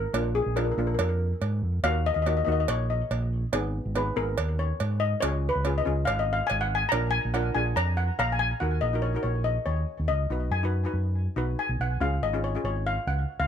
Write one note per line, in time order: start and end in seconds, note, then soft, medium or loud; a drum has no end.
0.00 0.36 A#4 loud
0.14 0.38 A#1 medium
0.14 0.40 A#3 medium
0.14 0.40 D4 medium
0.14 0.41 F4 medium
0.14 cowbell medium
0.35 0.55 G#4 medium
0.46 0.70 A#1 medium
0.56 0.70 A#3 medium
0.56 0.71 D4 medium
0.56 0.71 F4 medium
0.56 0.63 A#4 medium
0.56 cowbell medium
0.64 0.70 A#4 medium
0.72 0.78 A#4 medium
0.77 0.94 A#1 medium
0.77 1.29 A#3 medium
0.77 1.30 D4 medium
0.77 1.30 F4 medium
0.77 0.86 A#4 medium
0.87 0.93 A#4 medium
0.94 1.00 A#4 medium
0.99 1.31 F2 medium
0.99 1.08 A#4 medium
0.99 cowbell medium
1.09 1.16 A#4 medium
1.41 1.61 G#2 medium
1.41 cowbell medium
1.62 1.82 F2 medium
1.83 2.08 D#2 medium
1.83 2.10 A#3 medium
1.83 2.10 D#4 medium
1.83 2.10 F#4 medium
1.83 2.06 F5 loud
1.83 cowbell medium
2.06 2.13 D#5 loud
2.14 2.40 D#2 medium
2.14 2.21 D#5 medium
2.22 2.39 A#3 medium
2.22 2.40 D#4 medium
2.22 2.28 D#5 medium
2.26 2.40 F#4 medium
2.26 2.36 D#5 medium
2.26 cowbell medium
2.37 2.43 D#5 medium
2.45 2.63 D#2 medium
2.45 2.98 A#3 medium
2.45 2.99 D#4 medium
2.45 2.99 F#4 medium
2.45 2.51 D#5 medium
2.52 2.59 D#5 medium
2.60 2.66 D#5 medium
2.68 3.01 A#1 medium
2.68 2.89 C#5 medium
2.68 cowbell medium
2.90 3.50 D#5 medium
3.11 3.43 A#1 loud
3.11 cowbell medium
3.53 3.78 G#1 medium
3.53 3.79 B3 medium
3.53 3.79 D#4 medium
3.53 3.80 G#4 medium
3.53 cowbell loud
3.86 4.09 G#1 medium
3.95 4.09 B3 medium
3.95 4.09 D#4 medium
3.95 4.10 G#4 medium
3.95 4.18 B4 medium
3.95 cowbell medium
4.16 4.33 G#1 medium
4.16 4.68 B3 medium
4.16 4.68 D#4 medium
4.16 4.69 G#4 medium
4.16 4.60 A#4 medium
4.38 4.70 D#2 medium
4.38 cowbell medium
4.59 5.03 C#5 medium
4.80 5.12 G#2 medium
4.80 cowbell medium
5.00 5.23 D#5 medium
5.20 5.47 C#2 medium
5.20 5.48 C#4 medium
5.20 5.48 F4 medium
5.20 5.49 G#4 medium
5.20 5.51 C#5 medium
5.20 cowbell loud
5.49 5.79 B4 medium
5.55 5.79 C#2 medium
5.64 5.78 C#4 medium
5.64 5.79 F4 medium
5.64 5.79 G#4 medium
5.64 cowbell medium
5.78 6.08 D#5 medium
5.85 6.03 C#2 medium
5.85 6.37 C#4 medium
5.85 6.38 F4 medium
5.85 6.38 G#4 medium
6.05 6.40 G#1 medium
6.05 6.21 F5 loud
6.05 cowbell medium
6.19 6.35 D#5 medium
6.33 6.49 F5 medium
6.47 6.82 G#1 loud
6.47 6.63 G#5 loud
6.47 cowbell medium
6.61 6.77 F#5 medium
6.75 6.91 G#5 loud
6.89 7.17 A#1 medium
6.89 7.18 D4 medium
6.89 7.18 F4 medium
6.89 7.10 A#5 loud
6.89 cowbell medium
6.93 7.18 A#4 medium
7.11 7.34 G#5 loud
7.25 7.48 A#1 medium
7.34 7.48 D4 medium
7.34 7.48 F4 medium
7.34 7.48 A#4 medium
7.34 7.54 F#5 medium
7.34 cowbell medium
7.55 7.71 A#1 medium
7.55 8.07 D4 medium
7.55 8.07 F4 medium
7.55 8.07 G#4 medium
7.55 7.77 G#5 loud
7.76 8.08 F2 medium
7.76 7.98 A#5 medium
7.76 cowbell medium
7.97 8.19 F#5 medium
8.19 8.51 A#1 loud
8.19 8.34 F5 medium
8.19 8.29 A#5 loud
8.19 cowbell medium
8.32 8.38 G#5 medium
8.39 8.59 G#5 loud
8.60 8.77 D#2 medium
8.60 8.80 D#4 medium
8.60 8.81 F#4 medium
8.60 8.81 A#4 medium
8.60 8.83 F#5 medium
8.81 9.14 A#1 medium
8.81 8.91 D#5 medium
8.93 9.06 D#4 medium
8.93 9.06 F#4 medium
8.93 9.07 A#4 medium
9.02 9.22 C#5 medium
9.15 9.65 D#4 medium
9.15 9.66 F#4 medium
9.15 9.66 A#4 medium
9.23 9.56 A#1 medium
9.23 9.46 C#5 medium
9.44 9.67 D#5 medium
9.66 9.83 D#2 medium
9.66 10.10 C#5 medium
10.00 10.07 D#2 medium
10.08 10.25 C#2 medium
10.08 10.53 D#5 medium
10.30 10.46 B1 medium
10.30 10.50 D#4 medium
10.30 10.50 F#4 medium
10.30 10.51 B4 medium
10.51 10.84 F#2 medium
10.51 10.91 G#5 medium
10.63 10.76 D#4 medium
10.63 10.76 F#4 medium
10.63 10.76 B4 medium
10.85 11.16 D#4 medium
10.85 11.16 F#4 medium
10.85 11.17 B4 medium
10.93 11.26 F#2 medium
11.36 11.53 B1 medium
11.36 11.75 D#4 medium
11.36 11.76 F#4 medium
11.36 11.76 B4 medium
11.59 11.81 G#5 medium
11.69 11.77 B1 medium
11.80 11.96 B1 medium
11.80 12.02 F#5 medium
12.00 12.17 C#2 loud
12.00 12.20 C#4 medium
12.00 12.20 F4 medium
12.00 12.20 G#4 medium
12.00 12.21 F5 medium
12.22 12.54 G#1 medium
12.22 12.42 D#5 medium
12.33 12.45 C#4 medium
12.33 12.46 F4 medium
12.33 12.46 G#4 medium
12.44 12.63 C#5 medium
12.55 13.05 C#4 medium
12.55 13.05 F4 medium
12.55 13.06 G#4 medium
12.64 12.96 G#1 medium
12.64 12.74 C#5 medium
12.87 13.08 F5 medium
13.07 13.23 C#2 medium
13.07 13.41 F#5 medium
13.40 13.47 C#2 medium
13.40 13.47 F5 medium